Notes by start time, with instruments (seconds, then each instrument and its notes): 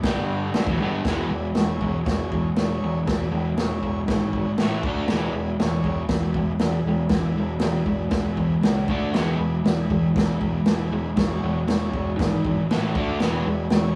0.02 fingered electric bass G1, overdriven electric guitar G2 D3, transistor combo organ D4 G4 D5, kick, snare, crash
0.07 overdriven electric guitar G3
0.26 transistor combo organ D4 G4 D5
0.54 fingered electric bass G1, overdriven electric guitar G2 D3, transistor combo organ E4 G#4 B4, snare, crash
0.66 fingered electric bass E1, overdriven electric guitar E2 B2, kick
0.80 fingered electric bass G1, overdriven electric guitar G2 D3 G3
1.05 fingered electric bass E1, overdriven electric guitar E3 G#3, transistor combo organ E4 G#4 B4, kick, snare, crash
1.09 overdriven electric guitar B3
1.29 fingered electric bass E1, overdriven electric guitar E3 G#3
1.54 fingered electric bass E1, overdriven electric guitar E3, transistor combo organ E4 G#4 C#5, snare, crash
1.58 overdriven electric guitar G#3
1.80 fingered electric bass E1, overdriven electric guitar E3 G#3, kick
2.03 fingered electric bass E1, overdriven electric guitar E3 G#3, transistor combo organ E4 G#4 C#5, kick, snare, crash
2.32 overdriven electric guitar E3 G#3, kick
2.56 fingered electric bass E1, overdriven electric guitar E3 G#3, transistor combo organ E4 G#4 C#5, snare, crash
2.82 fingered electric bass E1, overdriven electric guitar E3 G#3
3.05 fingered electric bass E1, overdriven electric guitar E3 G#3, transistor combo organ E4 G#4 B4, kick, snare, crash
3.31 fingered electric bass E1, overdriven electric guitar E3 G#3
3.57 fingered electric bass E1, overdriven electric guitar E3 G#3, transistor combo organ E4 G#4 C#5, snare, crash
3.82 fingered electric bass E1, overdriven electric guitar E3 G#3, kick
4.07 fingered electric bass G#1, overdriven electric guitar E3 G#3, transistor combo organ E4 G#4 C#5, kick, snare, crash
4.33 overdriven electric guitar E3 G#3, transistor combo organ F#5, kick
4.57 fingered electric bass A1, overdriven electric guitar A2 E3, transistor combo organ E4 A4 E5 G#5, snare, crash
4.62 overdriven electric guitar A3
4.82 fingered electric bass D2, overdriven electric guitar D3 A3, transistor combo organ D4 A4 D5 A5, kick
4.87 overdriven electric guitar D4
5.07 fingered electric bass E1, overdriven electric guitar E3 G#3 B3, transistor combo organ E4 G#4 B4, snare, crash
5.33 fingered electric bass E1, overdriven electric guitar E3 G#3
5.59 fingered electric bass E1, overdriven electric guitar E3 G#3, transistor combo organ E4 G#4 C#5, snare, crash
5.84 fingered electric bass E1, overdriven electric guitar E3 G#3, kick
6.08 fingered electric bass E1, overdriven electric guitar E3 G#3, transistor combo organ E4 G#4 B4, kick, snare, crash
6.34 overdriven electric guitar E3 G#3, kick
6.58 fingered electric bass E1, overdriven electric guitar E3 G#3, transistor combo organ E4 G#4 B4, snare, crash
6.84 fingered electric bass E1, overdriven electric guitar E3
6.88 overdriven electric guitar G#3
7.09 fingered electric bass E1, overdriven electric guitar E3, transistor combo organ E4 G#4 B4, kick, snare, crash
7.13 overdriven electric guitar G#3
7.35 fingered electric bass E1, overdriven electric guitar E3 G#3
7.59 fingered electric bass E1, overdriven electric guitar E3 G#3, transistor combo organ E4 G#4 B4, snare, crash
7.85 fingered electric bass E1, overdriven electric guitar E3 G#3, kick
8.10 fingered electric bass E1, overdriven electric guitar E3 G#3, transistor combo organ E4 G#4 B4, kick, snare, crash
8.37 overdriven electric guitar E3 G#3, kick
8.60 fingered electric bass C#2, overdriven electric guitar E3 G#3, transistor combo organ E4 G#4 B4, snare, crash
8.87 fingered electric bass D2, overdriven electric guitar D3 A3 D4, transistor combo organ D4 A4 D5, kick
9.12 fingered electric bass E1, overdriven electric guitar E3 G#3 B3, transistor combo organ E4 G#4 B4, snare, crash
9.38 fingered electric bass E1, overdriven electric guitar E3 G#3
9.64 fingered electric bass E1, overdriven electric guitar E3 G#3, transistor combo organ E4 G#4 B4, snare, crash
9.90 fingered electric bass E1, overdriven electric guitar E3 G#3, kick
10.16 fingered electric bass E1, overdriven electric guitar E3 G#3, transistor combo organ E4 G#4 B4, kick, snare, crash
10.41 overdriven electric guitar E3 G#3, kick
10.65 fingered electric bass E1, overdriven electric guitar E3 G#3, transistor combo organ E4 G#4 B4, snare, crash
10.92 fingered electric bass E1, overdriven electric guitar E3 G#3
11.16 fingered electric bass E1, overdriven electric guitar E3 G#3, transistor combo organ E4 G#4 C#5, kick, snare, crash
11.42 fingered electric bass E1, overdriven electric guitar E3 G#3
11.67 fingered electric bass E1, overdriven electric guitar E3 G#3, transistor combo organ E4 G#4 C#5, snare, crash
11.93 fingered electric bass E1, overdriven electric guitar E3 G#3, kick
12.18 fingered electric bass G#1, overdriven electric guitar E3 G#3, transistor combo organ E4 G#4 B4, kick, snare, crash
12.45 overdriven electric guitar E3 G#3, kick
12.69 fingered electric bass A1, overdriven electric guitar A2 E3 A3, transistor combo organ E4 A4 E5, snare, crash
12.95 fingered electric bass D2, overdriven electric guitar D3 A3 D4, transistor combo organ D4 A4 D5, kick
13.20 fingered electric bass E1, overdriven electric guitar E3 G#3 B3, transistor combo organ E4, snare, crash
13.25 transistor combo organ G#4 B4
13.46 fingered electric bass E1, overdriven electric guitar E3 G#3
13.70 fingered electric bass E1, overdriven electric guitar E3 G#3, transistor combo organ E4, snare, crash
13.75 transistor combo organ G#4 C#5